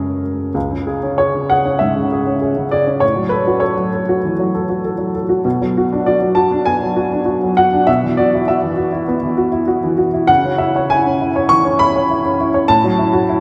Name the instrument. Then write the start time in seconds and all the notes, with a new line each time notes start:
upright piano
Already playing: F#2 C#3 G#3 G#4 A#4
0.54 C#2
0.72 C#3
0.87 G#4
1.03 C#4
1.18 G#4 C#5
1.34 C#3
1.50 G#4 F#5
1.65 C#4
1.79 G#2 E5
1.97 C#3
2.12 G#4
2.27 C#4
2.41 G#4
2.57 C#3
2.71 G#4 D5
2.87 C#4
3.00 A2 C#5
3.16 F#3
3.29 A4 B4
3.47 F#4
3.60 A4 C#5
3.76 F#3
3.92 A4
4.09 F#4
4.25 E3
4.39 F#3
4.54 A4
4.69 F#4
4.85 A4
4.98 F#3
5.15 A4
5.29 F#4
5.45 B2
5.61 F#3
5.77 F#4
5.92 D4
6.06 F#4 D5
6.21 F#3
6.35 F#4 A5
6.52 D4
6.66 B3 G#5
6.83 F#3
6.96 F#4
7.12 D4
7.26 F#4
7.43 F#3
7.57 F#4 F#5
7.73 D4
7.87 B2 E5
8.03 E3
8.17 F#4 D5
8.34 E4
8.48 F#4 E5
8.63 E3
8.77 F#4
8.92 E4
9.08 B3
9.23 E3
9.38 F#4
9.52 E4
9.68 F#4
9.83 E3
9.98 F#4
10.14 E4
10.27 C#3 F#5
10.45 C#4
10.58 E4 E5
10.76 C#5
10.90 E4 G#5
11.06 C#4
11.21 E4
11.36 C#5
11.49 E3 C#6
11.65 C#4
11.79 E4 B5
11.96 C#5
12.10 E4
12.25 C#4
12.40 E4
12.54 C#5
12.68 A2 A5
12.84 F#3
12.98 E4
13.13 F#4
13.29 E4